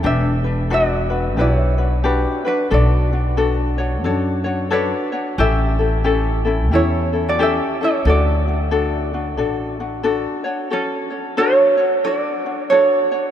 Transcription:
0.03 1.37 E1 medium
0.03 0.45 D4 medium
0.03 0.44 G4 medium
0.03 0.67 G4 medium
0.03 0.43 B4 medium
0.03 0.74 E5 medium
0.44 0.69 D4 soft
0.44 0.70 B4 medium
0.70 1.10 D4 medium
0.70 1.10 F#4 medium
0.70 1.35 F#4 medium
0.70 1.09 B4 medium
0.70 1.41 D5 medium
1.10 1.36 D4 soft
1.10 1.37 F#4 soft
1.10 1.37 B4 medium
1.37 2.24 B1 medium
1.37 1.78 D4 medium
1.37 2.42 E4 medium
1.37 1.78 F#4 medium
1.37 1.78 G4 medium
1.37 1.77 B4 medium
1.37 1.52 D5 medium
1.52 2.42 C#5 medium
1.78 2.03 D4 soft
1.78 2.04 F#4 soft
1.78 2.04 B4 medium
2.04 2.45 D4 medium
2.04 2.45 F#4 medium
2.04 2.45 G4 medium
2.04 2.44 B4 medium
2.45 2.70 D4 soft
2.45 2.70 D4 medium
2.45 2.70 F#4 soft
2.45 2.70 B4 medium
2.45 2.73 B4 medium
2.71 4.05 B1 medium
2.71 3.12 D4 medium
2.71 3.11 F#4 medium
2.71 3.75 F#4 medium
2.71 3.12 A4 medium
2.71 3.76 D5 medium
3.13 3.37 D4 soft
3.13 3.37 F#4 soft
3.37 3.79 D4 medium
3.37 3.78 F#4 medium
3.37 3.78 A4 medium
3.78 4.03 D4 soft
3.78 4.04 F#4 medium
3.78 4.04 C#5 medium
4.04 4.91 F#2 medium
4.04 4.45 D4 medium
4.04 4.45 F#4 medium
4.04 4.45 A4 medium
4.04 4.43 C#5 medium
4.44 4.70 D4 soft
4.44 4.70 F#4 medium
4.44 4.71 C#5 medium
4.71 5.12 D4 medium
4.71 5.35 D4 medium
4.71 5.12 F#4 medium
4.71 5.12 A4 medium
4.71 5.41 B4 medium
4.71 5.11 C#5 medium
5.12 5.38 D4 soft
5.12 5.38 F#4 soft
5.12 5.38 C#5 medium
5.38 6.72 A1 medium
5.38 5.79 C#4 medium
5.38 5.79 E4 medium
5.38 5.79 G4 medium
5.38 6.68 G4 medium
5.38 5.78 A4 medium
5.38 6.68 E5 loud
5.79 6.03 C#4 soft
5.79 6.03 E4 soft
5.79 6.04 A4 medium
6.04 6.45 C#4 medium
6.04 6.45 E4 medium
6.04 6.45 G4 medium
6.04 6.44 A4 medium
6.45 6.71 C#4 soft
6.45 6.72 E4 medium
6.45 6.71 A4 medium
6.71 7.58 E2 medium
6.71 7.12 C#4 medium
6.71 7.13 E4 medium
6.71 7.22 E4 medium
6.71 7.12 G4 medium
6.71 7.12 A4 medium
6.71 7.28 C#5 medium
7.13 7.38 C#4 soft
7.13 7.39 E4 soft
7.13 7.38 A4 soft
7.29 7.39 F#4 medium
7.29 7.40 D5 medium
7.39 7.79 C#4 medium
7.39 7.80 E4 medium
7.39 7.79 G4 medium
7.39 7.77 G4 medium
7.39 7.80 A4 medium
7.39 7.82 E5 medium
7.81 8.06 C#4 soft
7.81 8.06 E4 soft
7.81 8.05 E4 medium
7.81 8.05 A4 medium
7.81 8.08 C#5 medium
8.05 9.39 D2 medium
8.05 8.46 D4 medium
8.05 8.46 F#4 medium
8.05 10.43 F#4 medium
8.05 8.46 A4 medium
8.10 10.44 D5 medium
8.48 8.70 D4 soft
8.48 8.71 F#4 soft
8.71 9.12 D4 medium
8.71 9.12 F#4 medium
8.71 9.12 A4 medium
9.14 9.37 D4 medium
9.14 9.38 F#4 medium
9.37 10.25 A1 medium
9.37 9.79 D4 medium
9.37 9.79 F#4 medium
9.37 9.78 A4 medium
9.80 10.03 D4 soft
9.80 10.03 F#4 medium
10.03 10.45 D4 medium
10.03 10.44 F#4 medium
10.03 10.44 A4 medium
10.44 10.71 D4 soft
10.44 10.70 F#4 medium
10.44 10.70 C#5 medium
10.70 11.35 C#4 medium
10.70 11.10 F#4 medium
10.70 11.11 A4 medium
10.70 11.38 A4 medium
10.70 11.09 C#5 medium
11.10 11.37 F#4 soft
11.10 11.37 C#5 soft
11.37 11.78 D4 medium
11.37 11.78 F#4 medium
11.37 12.01 F#4 medium
11.37 11.78 A4 medium
11.37 12.05 C#5 loud
11.37 11.76 C#5 medium
11.77 12.04 D4 soft
11.77 12.04 F#4 soft
11.77 12.04 C#5 medium
12.04 12.45 D4 medium
12.04 12.45 F#4 medium
12.04 12.68 F#4 medium
12.04 12.45 A4 medium
12.04 12.16 C#5 loud
12.16 12.73 D5 loud
12.46 12.71 D4 soft
12.46 12.71 F#4 soft
12.70 13.12 D4 medium
12.70 13.11 F#4 medium
12.70 13.31 F#4 medium
12.70 13.12 A4 medium
12.70 13.31 C#5 medium
12.70 13.10 C#5 medium
13.12 13.31 D4 soft
13.12 13.31 F#4 soft
13.12 13.31 C#5 medium

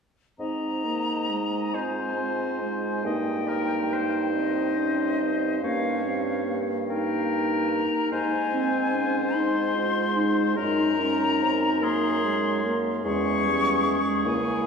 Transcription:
0.39 3.01 G#2 soft
0.39 0.86 C4 soft
0.39 1.77 D#4 soft
0.39 1.76 D#5 soft
0.39 1.76 A#5 medium
0.84 1.31 A#3 soft
1.29 1.76 G#3 soft
1.75 2.17 C4 soft
1.75 3.05 F4 soft
1.75 3.05 C5 soft
1.75 3.05 G#5 soft
2.17 2.60 C4 soft
2.61 3.06 G#3 soft
3.04 5.58 G2 soft
3.04 4.33 A#3 soft
3.04 5.59 D#4 soft
3.04 3.50 D#5 soft
3.04 4.32 G5 medium
3.48 3.95 A#4 soft
3.93 5.63 C5 soft
4.33 4.79 C4 soft
4.33 5.59 D#5 medium
4.77 5.22 C#4 soft
5.20 5.63 C4 soft
5.60 7.82 G2 soft
5.60 6.04 A#3 soft
5.60 6.58 C#4 soft
5.60 6.59 C#5 soft
5.60 6.57 F5 medium
6.05 6.47 C4 soft
6.46 9.10 A#3 soft
6.87 8.08 D#4 soft
6.87 8.09 A#4 soft
6.87 7.70 G5 medium
7.69 8.10 A#5 medium
8.11 10.54 G#2 medium
8.11 8.53 D#4 soft
8.11 10.54 C5 soft
8.11 9.37 G#5 medium
8.53 8.96 C4 soft
8.94 9.36 C#4 medium
9.35 10.58 G#3 soft
9.35 9.77 D#4 medium
9.35 10.56 C6 medium
9.76 10.18 F4 soft
10.17 10.57 D#4 medium
10.56 13.01 F#2 soft
10.56 11.02 D#4 medium
10.56 12.76 D#4 soft
10.56 11.85 A#4 soft
10.56 11.85 A#5 loud
11.00 11.43 C#4 medium
11.41 11.84 C4 soft
11.82 12.26 A#3 medium
11.82 12.80 G#4 medium
11.82 12.80 C6 medium
12.24 12.66 G#3 medium
12.65 13.04 A#3 medium
13.04 13.96 E2 medium
13.04 13.46 G#3 medium
13.04 14.27 C#4 soft
13.04 14.66 G#4 medium
13.04 14.21 C#6 loud
13.44 13.86 G3 medium
13.84 14.27 G#3 medium
14.25 14.66 C#2 medium
14.25 14.66 A#3 medium
14.25 14.66 E4 medium
14.25 14.66 G#5 medium

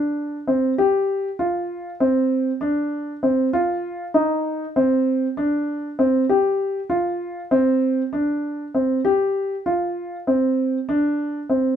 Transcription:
0.00 0.36 D4 medium
0.47 0.72 C4 medium
0.78 1.28 G4 medium
1.39 1.89 F4 medium
2.00 2.50 C4 medium
2.61 3.11 D4 medium
3.23 3.48 C4 medium
3.53 4.03 F4 medium
4.14 4.64 D#4 medium
4.76 5.26 C4 medium
5.37 5.87 D4 medium
5.99 6.24 C4 medium
6.29 6.79 G4 medium
6.90 7.39 F4 medium
7.51 8.01 C4 medium
8.13 8.62 D4 medium
8.75 8.99 C4 medium
9.05 9.54 G4 medium
9.66 10.15 F4 medium
10.27 10.77 C4 medium
10.89 11.38 D4 medium
11.50 11.74 C4 medium

